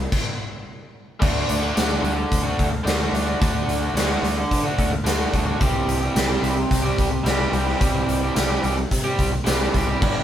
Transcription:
0.12 kick, crash
1.20 D2 D3 A3 D4 F#4, kick, crash
1.49 D2, closed hi-hat
1.60 A3 D4 F#4
1.74 D2 D3 A3 D4 F#4, snare, closed hi-hat, tambourine
1.87 A3 D4 F#4
2.01 D2 D3 A3 D4 F#4, closed hi-hat
2.16 muted overdriven electric guitar stroke
2.32 D2, kick, closed hi-hat
2.43 A3 D4 F#4
2.59 D2, kick, closed hi-hat
2.71 muted overdriven electric guitar stroke
2.84 D2 D3 A3 D4 F#4, snare, closed hi-hat, tambourine
3.11 D2 D3 A3 D4 F#4, closed hi-hat
3.26 A3 D4 F#4
3.40 D2 D3 A3 D4 F#4, kick, closed hi-hat
3.67 D2, closed hi-hat
3.80 A3 D4 F#4
3.94 D2 D3 A3 D4 F#4, snare, closed hi-hat, tambourine
4.09 A3 D4 F#4
4.22 D2 D3 A3 D4 F#4, closed hi-hat
4.37 muted overdriven electric guitar stroke
4.51 D3, kick, closed hi-hat
4.64 A3 D4 F#4
4.78 D2, kick, closed hi-hat
4.92 muted overdriven electric guitar stroke
5.04 D2 D3 A3 D4 F#4, snare, closed hi-hat, tambourine
5.32 D2 D3 A3 D4 F#4, kick, closed hi-hat
5.45 A3 D4 F#4
5.59 C2 C3 E3 G3 C4 G4, kick, closed hi-hat
5.87 C2, closed hi-hat
6.01 G3 C4 G4
6.14 C2 C3 E3 G3 C4 G4, snare, closed hi-hat, tambourine
6.28 G3 C4 G4
6.42 C2 E3 G3 C4 G4, closed hi-hat
6.56 muted overdriven electric guitar stroke
6.71 C2, kick, closed hi-hat
6.82 G3 C4 G4
6.98 C2, kick, closed hi-hat
7.10 muted overdriven electric guitar stroke
7.24 C2 C3 E3 G3 C4 G4, snare, closed hi-hat, tambourine
7.52 C2 E3 G3 C4 G4, closed hi-hat
7.66 G3 C4 G4, snare
7.80 C2 C3 E3 G3 C4 G4, kick, closed hi-hat
8.09 C2, closed hi-hat
8.22 G3 C4 G4
8.34 C2 C3 E3 G3 C4 G4, snare, closed hi-hat, tambourine
8.48 G3 C4 G4
8.62 C2 E3 G3 C4 G4, closed hi-hat
8.77 muted overdriven electric guitar stroke
8.91 C3, kick, closed hi-hat
9.04 G3 C4 G4
9.19 C2, kick, closed hi-hat
9.32 muted overdriven electric guitar stroke
9.44 C2 C3 E3 G3 C4 G4, snare, closed hi-hat, tambourine
9.73 C2 E3 G3 C4 G4, kick, closed hi-hat
9.88 G3 C4 G4
10.01 G1 G2 D3 G3 B3 D4 G4, kick, crash

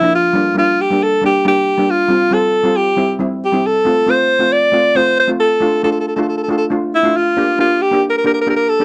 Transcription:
Already playing: E4
0.01 F3 A#3 D4
0.15 F4
0.33 G3 A#3 D4
0.55 G3 A#3 D4 F4
0.81 G4
0.90 G3 A#3 D4
1.03 A4
1.21 G3 A#3 D4
1.26 G4
1.45 G3 A#3 D4 G4
1.78 G3 A#3 D4
1.91 F4
2.08 G3 C4 F4
2.31 G3 C4 F4 A4
2.63 G3 C4 F4
2.76 G4
2.96 G3 C4 E4
3.19 G3 C4 E4
3.45 G4
3.52 G3 C4 E4
3.67 A4
3.85 A3 C4 F4
4.06 A3 C4 F4 C5
4.39 A3 C4 F4
4.53 D5
4.72 A3 C4 F4
4.95 A3 C4 F4 C5
5.20 C5
5.27 A3 C4 F4
5.40 A4
5.60 A3 D4 F4
5.83 A3 D4 F4 A4
5.92 A4
6.00 A4
6.08 A4
6.16 A3 D4 F4 A4
6.22 A4
6.29 A4
6.37 A4
6.43 A4
6.48 A3 D4 F4 A4
6.57 A4
6.70 A3 D4 F4
6.95 E4
7.03 A3 D4 F4
7.17 F4
7.37 A#3 D4 G4
7.59 A#3 D4 F4 G4
7.82 G4
7.91 A#3 D4 G4
8.10 A#4
8.18 A#4
8.24 A#3 D4 G4 A#4
8.34 A#4
8.41 A#4
8.47 A#3 D4 G4 A#4
8.56 A#4
8.69 A4
8.80 A#3 D4 G4

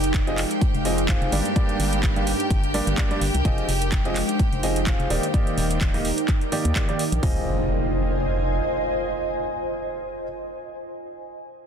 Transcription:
Already playing: F1 G#3 D#4 G4 A#4 D5 F5 G5
0.04 C5, closed hi-hat
0.14 kick, clap, closed hi-hat
0.27 F3 C4 F4 G#4 D#5, closed hi-hat
0.38 clap, open hi-hat
0.51 closed hi-hat
0.61 kick, closed hi-hat
0.74 F1, closed hi-hat
0.85 F3 C4 F4 G#4 D#5, open hi-hat
0.98 closed hi-hat
1.09 C4 F4 G#4 F5, kick, clap, closed hi-hat
1.22 F1, closed hi-hat
1.32 G1 G2 A#3 D4 G4 D5, open hi-hat
1.42 G4, closed hi-hat
1.47 G5
1.55 G2 A#3 D4 G4 A#4 D5, kick, closed hi-hat
1.69 closed hi-hat
1.80 G1, open hi-hat
1.93 closed hi-hat
2.03 kick, clap, closed hi-hat
2.16 G2 A#3 D4 G4 F5, closed hi-hat
2.27 open hi-hat
2.40 closed hi-hat
2.50 G1, kick, closed hi-hat
2.64 closed hi-hat
2.74 G2 A#3 D4 G4 D5, open hi-hat
2.87 G1, closed hi-hat
2.98 G2 A#3 D4 G4 D5, kick, clap, closed hi-hat
3.11 G2 A#3 D4 G4 D5, closed hi-hat
3.21 G1, open hi-hat
3.34 C2, closed hi-hat
3.45 F3 C4 D#4 F4 G#4 D#5, kick, closed hi-hat
3.56 G#3, closed hi-hat
3.62 C5
3.69 F1, open hi-hat
3.82 closed hi-hat
3.89 F5, kick, clap, closed hi-hat
4.05 F3 C4 F4 G#4 D#5, closed hi-hat
4.16 clap, open hi-hat
4.29 closed hi-hat
4.39 kick, closed hi-hat
4.52 F1, closed hi-hat
4.63 F3 C4 F4 G#4 D#5, open hi-hat
4.76 closed hi-hat
4.87 C4 F4 G#4 F5, kick, clap, closed hi-hat
5.00 F1, closed hi-hat
5.10 D#1 D#3 A#3 D#4 G4 D5, open hi-hat
5.23 closed hi-hat
5.34 D#3 A#3 D#4 G4 A#4 D5, kick, closed hi-hat
5.47 D5, closed hi-hat
5.57 D#1, open hi-hat
5.71 G5, closed hi-hat
5.81 kick, clap, closed hi-hat
5.94 D#3 A#3 D#4 G4 D#5, open hi-hat
6.05 open hi-hat
6.18 closed hi-hat
6.28 kick, clap, closed hi-hat
6.41 closed hi-hat
6.52 D#3 A#3 D#4 G4 D5, open hi-hat
6.65 D#2, closed hi-hat
6.76 D#3 A#3 D#4 G4 D5, kick, clap, closed hi-hat
6.89 D#3 A#3 D#4 G4 D5, closed hi-hat
6.99 open hi-hat
7.12 A#1, closed hi-hat
7.23 F1 C4 F4 G#4 D#5, kick, floor tom, open hi-hat, impact
7.31 C5
7.38 D#5
7.45 G#5

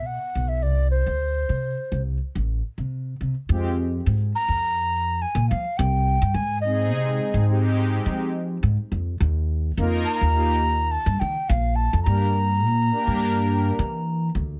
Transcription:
Already playing: B2
0.06 F#5
0.35 B1
0.48 E5
0.62 C2 D5
0.91 C5
1.06 D2
1.49 C3
1.92 C2
2.35 A1
2.78 C3
3.21 C3
3.48 F2 G#3 C4 F4 G4
4.06 G#2
4.35 A#5
4.48 F2
5.22 G#5
5.35 A#2
5.49 F3 F5
5.77 C2 G5
6.22 G2
6.34 G#2 G#5
6.61 G#3 C4 D#4 G#4 D#5
6.92 C3
7.34 G#2
7.49 G#3 C4 D#4 G4
8.06 F3
8.63 G#2
8.92 F2
9.20 D#2
9.77 F2 A#3 D#4 F4 A#4
10.05 A#5
10.21 D#2
10.34 A#3 D#4 F4 G4
10.91 A5
11.06 G2
11.20 D#3 G5
11.49 A#1 F5
11.76 A5
11.93 F2
12.03 G2 A#3 D4 G4 A#4 A#5
12.64 A#2
12.91 A#3 D4 G4 A#4
13.07 G2
13.79 E3
14.35 D2

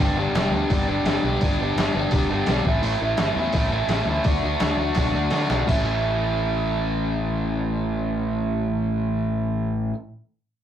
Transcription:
Already playing: G2 D3
0.00 G1 G3 B3 D4 G4
0.15 G1 G2 D3 G3 B3 D4
0.19 G4
0.33 E1 G2 D3 G3 B3, snare, open hi-hat
0.37 D4 G4
0.50 D2 G2 D3 G3
0.54 B3 D4 G4
0.69 G1 G2 D3 G3 B3 D4 G4, kick, open hi-hat
0.87 G1 G2 D3 G3 B3 D4
0.91 G4
1.04 G1 G2 D3 G3 D4, snare, open hi-hat
1.08 B3 G4
1.22 B1 G2 D3 G3 B3 D4 G4
1.41 G1 G2 D3 G3 B3, kick, open hi-hat
1.46 D4 G4
1.59 G1 G2 D3 G3 B3 D4 G4
1.76 G1 G2 D3 G3 B3, snare, open hi-hat
1.80 D4 G4
1.94 G1 G2 D3 G3 B3 D4 G4
2.11 E1 G2 D3 G3 B3 D4 G4, kick, open hi-hat
2.29 G1 G2 D3 G3 B3 D4
2.33 G4
2.46 B1 G2 D3 G3 B3 D4, snare, open hi-hat
2.51 G4
2.65 A1 A2 E3 A3 C#4 E4, kick
2.82 A1 A2 E3 A3 C#4 E4, open hi-hat
3.00 A1 A2 E3 A3 C#4 E4
3.17 G1 A2 E3 A3 C#4 E4, snare, open hi-hat
3.35 E2 A2 E3 A3 C#4 E4
3.53 A1 A2 E3 A3 C#4 E4, kick, open hi-hat
3.69 A1 A2 E3 A3 C#4 E4
3.88 A1 A2 E3 A3, snare, open hi-hat
3.92 C#4 E4
4.05 D2 A2 E3 A3
4.10 C#4 E4
4.24 D2 D3 A3 D4 F#4, kick, open hi-hat
4.43 D2 D3 A3 D4 F#4
4.60 D2 D3 A3 D4 F#4, snare, open hi-hat
4.77 D2 D3 A3 D4 F#4
4.95 B1 D3 A3 D4 F#4, kick, snare, open hi-hat
5.13 D2 D3 A3 D4 F#4
5.30 D3 A3 D4 F#4, snare, open hi-hat
5.47 B1 D3 A3 D4 F#4, snare
5.65 A1 A2 E3 A3 C#4 E4, kick, crash

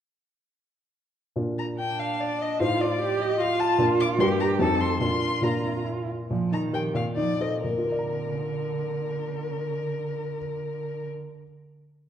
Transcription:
1.36 A#2 D4 F4 A#4
1.59 A#5
1.79 D4 G5
1.99 F5
2.20 D5
2.41 D#5
2.60 A2 D#4 F4 C5 F5
2.80 D5
3.02 G4
3.21 D#5
3.40 F4 F5
3.60 A5
3.78 A#2 D4 F4 A#4
4.00 D6
4.18 G2 D4 G4 A#4 C6
4.40 A#5
4.59 F2 D#4 F#4 A4 C5 A5
4.80 C6
5.00 A#2 D4 F4 A#4 C6
5.41 A#2 D4 F4 A#4 A#5
6.30 A#2 F3
6.52 D#3 D#4 A#5
6.73 G4 A#4 G5
6.94 A#2 F5
7.16 F3 D#4 D5
7.41 A4 C5 D#5
7.63 A#2 D3 A#4
7.70 A#3
7.78 F4
7.85 A#4
7.92 D5
7.99 A#5

